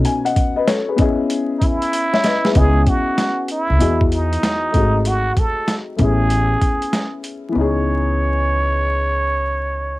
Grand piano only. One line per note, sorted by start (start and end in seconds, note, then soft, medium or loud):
0.00 0.94 B3 medium
0.00 0.96 C#4 soft
0.00 0.96 D#4 medium
0.00 0.97 F#4 soft
0.05 0.25 G#5 medium
0.25 0.55 D#5 medium
0.25 0.55 F#5 medium
0.56 0.67 B4 medium
0.56 0.67 D#5 medium
0.67 0.87 A4 medium
0.67 0.87 C#5 medium
0.88 1.00 G#4 medium
0.88 1.18 B4 medium
0.96 2.50 B3 medium
0.96 2.51 C#4 medium
0.96 2.23 D#5 medium
1.00 2.53 E4 medium
1.00 1.92 G#4 medium
2.13 2.24 C#5 medium
2.13 2.23 E5 medium
2.24 2.43 B4 medium
2.24 2.44 D#5 medium
2.44 2.57 G#4 medium
2.44 2.74 B4 medium
2.52 3.76 B3 medium
2.52 3.77 C#4 medium
2.52 3.78 D#5 medium
2.57 3.79 E4 medium
2.57 3.79 G#4 medium
3.79 4.74 E3 medium
3.79 4.73 B3 medium
3.79 4.74 F#4 medium
3.79 4.75 G#4 medium
3.79 4.74 D#5 medium
4.72 5.95 A3 medium
4.72 5.96 C4 medium
4.72 5.97 D#4 medium
4.76 5.98 G#3 medium
4.76 5.98 F#4 medium
5.97 7.51 A3 medium
5.97 7.51 B3 medium
5.97 7.52 C#4 medium
6.01 7.53 E4 medium
6.01 7.54 G#4 medium
7.49 9.99 E3 medium
7.49 9.99 B3 medium
7.55 9.99 C#4 medium
7.55 9.99 D#4 medium
7.60 9.99 G#4 medium